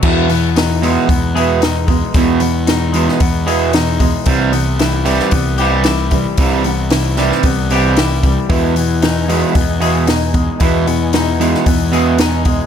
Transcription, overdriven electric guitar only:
\new Staff \with { instrumentName = "Overdriven electric guitar" } { \time 4/4 \key e \major \tempo 4 = 114 e8 b8 dis'8 gis8 b8 gis'8 dis'8 gis8 | e8 b8 dis'8 gis8 b8 gis'8 dis'8 gis8 | c8 b8 e'8 g8 b8 g'8 e'8 g8 | c8 b8 e'8 g8 b8 g'8 e'8 g8 |
e8 b8 dis'8 gis8 b8 gis'8 dis'8 gis8 | e8 b8 dis'8 gis8 b8 gis'8 dis'8 gis8 | }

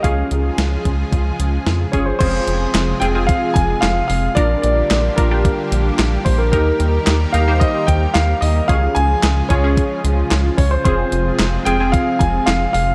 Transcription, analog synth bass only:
\new Staff \with { instrumentName = "Analog synth bass" } { \clef bass \time 4/4 \key f \minor \tempo 4 = 111 des,8 des,8 des,8 des,8 des,8 des,8 f,8 g,,8 | f,,8 f,,8 f,,8 f,,8. r16 f,,8 f,,8 f,,8 | bes,,8 bes,,8 bes,,8 bes,,8. r16 bes,,8 bes,,8 bes,,8 | ees,8 ees,8 ees,8 ees,8. r16 ees,8 ees,8 ees,8 |
des,8 des,8 des,8 des,8. r16 des,8 des,8 des,8 | f,,8 f,,8 f,,8 f,,8. r16 f,,8 f,,8 f,,8 | }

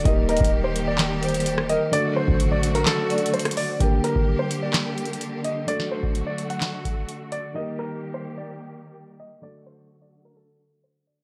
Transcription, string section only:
\new Staff \with { instrumentName = "String section" } { \time 4/4 \key g \minor \tempo 4 = 128 << { <g bes g'>1 | <fis a fis'>1 | <g bes g'>1 | <fis a fis'>1 |
<g bes g'>1 | <fis a fis'>1 | } \\ { ees1 | d1 | d1~ | d1 |
ees1 | d1 | } >> }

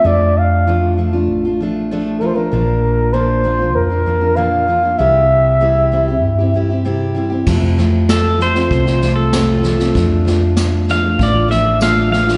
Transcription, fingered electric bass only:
\new Staff \with { instrumentName = "Fingered electric bass" } { \clef bass \time 4/4 \key f \major \tempo 4 = 97 f,2 a,,2 | bes,,2 f,2 | c,2 g,2 | f,2 c,2 |
f,2 a,,2 | }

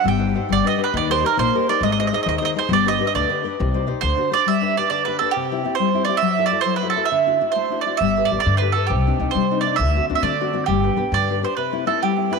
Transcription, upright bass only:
\new Staff \with { instrumentName = "Upright bass" } { \clef bass \time 6/8 \key c \minor \tempo 4. = 135 g,,4. g,,8 r4 | ees,4. bes,,8 r4 | aes,,4. ees,8 r4 | g,,4. d,8 r4 |
c,4. d,8 r4 | \key g \major r2. | r2. | r2. |
r2. | g,,4 g,,16 r16 g,4. | c,4 c,16 r16 c4. | d,4 d,16 r16 d4. |
g,,4 g,,16 r16 g,4. | \key c \major r2. | }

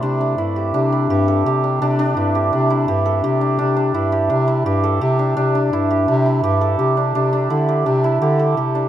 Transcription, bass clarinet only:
\new Staff \with { instrumentName = "Bass clarinet" } { \clef bass \time 5/4 \key c \major \tempo 4 = 168 c4 g,4 c4 g,4 c4 | c4 g,4 c4 g,4 c4 | c4 g,4 c4 g,4 c4 | c4 g,4 c4 g,4 c4 |
c4 d4 c4 d4 c4 | }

